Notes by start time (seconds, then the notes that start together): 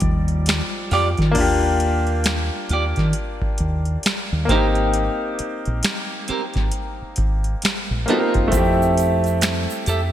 Already playing: F3 G3 D5
0.00 D#2, kick, closed hi-hat
0.28 closed hi-hat
0.46 muted clean electric guitar stroke, snare, closed hi-hat
0.50 finger snap
0.91 F2 F4 G4 D5, snare, open hi-hat
1.17 D#3, kick, closed hi-hat
1.22 snare
1.31 A#3 D4, closed hi-hat
1.35 D#2 F4, kick, crash
1.41 G4
1.80 closed hi-hat
2.07 closed hi-hat
2.24 finger snap, snare, closed hi-hat
2.69 D#2 F4 G4, closed hi-hat
2.73 D5
2.96 D#3, kick, snare, closed hi-hat
3.13 closed hi-hat
3.42 kick
3.58 D#2, closed hi-hat
3.85 closed hi-hat
4.03 muted clean electric guitar stroke, snare, closed hi-hat
4.07 finger snap
4.33 D#2
4.45 A#3 C4, kick
4.49 G#1 C4 D#4 G4 A#4, snare, closed hi-hat
4.55 G4
4.75 closed hi-hat
4.94 closed hi-hat
5.39 muted fingered electric bass stroke, closed hi-hat
5.66 A#1, closed hi-hat
5.83 finger snap, snare, closed hi-hat
6.28 C4 G4 A#4, muted fingered electric bass stroke, closed hi-hat
6.54 G#1, kick, snare, closed hi-hat
6.72 closed hi-hat
7.02 muted fingered electric bass stroke
7.16 G#1, kick, closed hi-hat
7.44 closed hi-hat
7.62 muted clean electric guitar stroke, muted fingered electric bass stroke, snare, closed hi-hat
7.66 finger snap
7.91 A#1
8.06 A#3 C4 D#4 G4, closed hi-hat
8.10 F4 A#4, snare
8.34 F#1, kick, closed hi-hat
8.48 A3 C4
8.52 F2 E4, kick, closed hi-hat, shaker
8.57 G4
8.82 shaker
8.97 closed hi-hat, shaker
9.24 closed hi-hat, shaker
9.41 finger snap, snare, closed hi-hat, shaker
9.44 finger snap
9.70 shaker
9.86 F2 G4 A4 E5, closed hi-hat, shaker